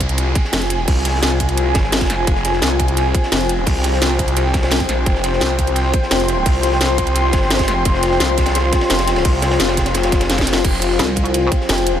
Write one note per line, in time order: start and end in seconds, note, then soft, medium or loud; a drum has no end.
0.00 0.34 C2 loud
0.00 12.00 F4 medium
0.00 12.00 C5 medium
0.00 12.00 G5 medium
0.00 5.04 G#5 medium
0.00 kick medium
0.00 closed hi-hat medium
0.00 ride medium
0.09 closed hi-hat soft
0.18 closed hi-hat loud
0.18 ride medium
0.35 kick loud
0.35 closed hi-hat medium
0.35 ride medium
0.44 snare soft
0.53 0.86 F1 loud
0.53 snare loud
0.53 closed hi-hat medium
0.53 ride loud
0.62 closed hi-hat soft
0.70 snare soft
0.70 closed hi-hat medium
0.70 ride medium
0.88 1.21 C2 medium
0.88 kick loud
0.88 closed hi-hat medium
0.88 open hi-hat medium
1.05 snare medium
1.05 closed hi-hat medium
1.05 ride medium
1.15 snare soft
1.22 1.74 C2 loud
1.22 snare loud
1.22 closed hi-hat medium
1.22 ride medium
1.31 snare soft
1.40 kick medium
1.40 closed hi-hat medium
1.40 ride medium
1.49 closed hi-hat soft
1.49 ride soft
1.57 closed hi-hat loud
1.57 ride medium
1.74 2.08 G1 loud
1.74 kick loud
1.74 snare loud
1.74 closed hi-hat medium
1.74 ride medium
1.84 snare medium
1.92 snare loud
1.92 snare medium
1.92 closed hi-hat medium
1.92 ride medium
1.97 snare loud
1.97 ride medium
2.01 kick medium
2.01 snare medium
2.01 closed hi-hat soft
2.01 ride medium
2.06 snare medium
2.06 ride medium
2.10 2.26 F1 loud
2.10 snare medium
2.10 closed hi-hat medium
2.10 ride medium
2.27 2.61 F1 loud
2.27 kick loud
2.27 closed hi-hat medium
2.27 ride medium
2.35 snare soft
2.45 snare soft
2.45 closed hi-hat medium
2.45 ride medium
2.53 snare soft
2.62 3.13 C2 loud
2.62 snare loud
2.62 closed hi-hat medium
2.62 ride medium
2.71 snare soft
2.79 kick medium
2.79 closed hi-hat medium
2.79 ride medium
2.88 closed hi-hat soft
2.97 closed hi-hat medium
2.97 ride medium
3.15 kick loud
3.15 closed hi-hat medium
3.15 ride medium
3.23 snare medium
3.32 3.65 F1 medium
3.32 snare loud
3.32 closed hi-hat medium
3.32 ride medium
3.41 closed hi-hat soft
3.49 snare soft
3.49 closed hi-hat medium
3.49 ride medium
3.66 4.00 C2 loud
3.66 kick loud
3.66 closed hi-hat medium
3.66 open hi-hat medium
3.84 snare medium
3.84 closed hi-hat medium
3.84 ride medium
3.93 snare medium
4.02 4.75 C2 loud
4.02 snare loud
4.02 closed hi-hat medium
4.02 ride medium
4.10 snare soft
4.19 kick medium
4.19 closed hi-hat medium
4.19 ride medium
4.28 closed hi-hat soft
4.28 ride soft
4.37 closed hi-hat medium
4.37 ride loud
4.54 kick loud
4.54 snare loud
4.54 closed hi-hat medium
4.54 ride medium
4.63 snare loud
4.63 ride medium
4.71 snare loud
4.71 closed hi-hat medium
4.71 ride medium
4.75 5.05 B1 loud
4.80 kick medium
4.80 closed hi-hat soft
4.89 snare medium
4.89 closed hi-hat medium
4.89 ride medium
5.06 5.40 F1 medium
5.06 10.62 C6 medium
5.06 kick loud
5.06 closed hi-hat medium
5.06 ride medium
5.15 snare soft
5.23 snare soft
5.23 closed hi-hat medium
5.23 ride medium
5.33 snare soft
5.41 5.92 C2 medium
5.41 snare loud
5.41 closed hi-hat medium
5.41 ride medium
5.50 snare soft
5.59 kick medium
5.59 closed hi-hat medium
5.59 ride medium
5.67 closed hi-hat soft
5.76 closed hi-hat medium
5.76 ride loud
5.93 kick loud
5.93 closed hi-hat medium
5.93 ride medium
6.03 snare soft
6.11 6.45 F1 medium
6.11 snare loud
6.11 closed hi-hat medium
6.11 ride medium
6.20 closed hi-hat soft
6.28 snare soft
6.28 closed hi-hat medium
6.28 ride medium
6.46 6.79 C2 loud
6.46 kick loud
6.46 closed hi-hat medium
6.46 open hi-hat medium
6.63 snare medium
6.63 closed hi-hat medium
6.63 ride medium
6.72 snare soft
6.81 7.32 C2 loud
6.81 snare loud
6.81 closed hi-hat medium
6.81 ride medium
6.89 snare soft
6.98 kick medium
6.98 closed hi-hat medium
6.98 ride medium
7.07 closed hi-hat soft
7.07 ride soft
7.15 closed hi-hat medium
7.15 ride medium
7.32 7.67 G1 loud
7.32 kick loud
7.32 snare loud
7.32 closed hi-hat medium
7.32 ride medium
7.42 snare medium
7.50 snare loud
7.50 snare medium
7.50 closed hi-hat medium
7.50 ride medium
7.55 snare medium
7.55 ride medium
7.59 kick medium
7.59 snare loud
7.59 closed hi-hat soft
7.59 ride medium
7.63 snare medium
7.63 ride medium
7.68 7.84 F1 loud
7.68 snare soft
7.68 closed hi-hat medium
7.68 ride medium
7.85 8.19 F1 loud
7.85 kick loud
7.85 closed hi-hat loud
7.85 ride medium
7.94 snare soft
8.03 snare soft
8.03 closed hi-hat medium
8.03 ride medium
8.11 snare soft
8.20 8.71 C2 loud
8.20 snare loud
8.20 closed hi-hat medium
8.20 ride medium
8.29 snare soft
8.37 kick medium
8.37 snare loud
8.37 closed hi-hat medium
8.37 ride medium
8.46 snare loud
8.46 closed hi-hat soft
8.46 ride medium
8.55 snare loud
8.55 closed hi-hat loud
8.55 ride medium
8.72 kick loud
8.72 snare loud
8.72 closed hi-hat medium
8.72 ride medium
8.81 snare loud
8.81 ride medium
8.90 9.24 F1 loud
8.90 snare loud
8.90 closed hi-hat loud
8.90 ride medium
8.99 snare loud
8.99 closed hi-hat soft
8.99 ride medium
9.07 snare loud
9.07 closed hi-hat medium
9.07 ride medium
9.16 snare loud
9.16 ride medium
9.25 9.58 C2 medium
9.25 kick loud
9.25 closed hi-hat medium
9.25 open hi-hat medium
9.42 snare loud
9.42 closed hi-hat medium
9.42 ride medium
9.51 snare loud
9.51 ride medium
9.59 10.11 F1 loud
9.59 snare medium
9.59 snare loud
9.59 closed hi-hat loud
9.59 ride medium
9.68 snare loud
9.68 snare soft
9.68 ride medium
9.77 kick medium
9.77 snare loud
9.77 closed hi-hat medium
9.77 ride medium
9.85 snare loud
9.85 closed hi-hat soft
9.85 ride medium
9.94 snare loud
9.94 closed hi-hat loud
9.94 ride medium
10.03 snare loud
10.03 closed hi-hat soft
10.03 ride medium
10.12 10.28 F1 loud
10.12 kick loud
10.12 snare loud
10.12 closed hi-hat medium
10.12 ride medium
10.20 snare loud
10.20 closed hi-hat soft
10.20 ride medium
10.30 10.63 F1 medium
10.30 snare loud
10.30 snare medium
10.30 closed hi-hat loud
10.30 ride medium
10.38 kick medium
10.38 snare loud
10.38 closed hi-hat soft
10.38 ride medium
10.41 snare medium
10.47 snare loud
10.47 closed hi-hat medium
10.47 ride medium
10.53 snare loud
10.53 ride medium
10.56 snare loud
10.65 10.98 F1 loud
10.65 12.00 G#5 medium
10.65 kick loud
10.65 closed hi-hat medium
10.65 ride medium
10.65 crash medium
10.73 snare soft
10.82 snare medium
10.82 closed hi-hat medium
10.82 ride medium
10.91 snare soft
10.99 11.50 C2 loud
10.99 snare loud
10.99 closed hi-hat loud
10.99 ride medium
11.08 snare soft
11.16 kick medium
11.16 closed hi-hat medium
11.16 ride medium
11.26 closed hi-hat soft
11.34 closed hi-hat loud
11.34 ride medium
11.52 kick loud
11.52 closed hi-hat medium
11.52 ride medium
11.61 snare soft
11.69 12.00 F1 loud
11.69 snare loud
11.69 closed hi-hat medium
11.69 ride medium
11.78 closed hi-hat soft
11.86 snare soft
11.86 closed hi-hat medium
11.86 ride medium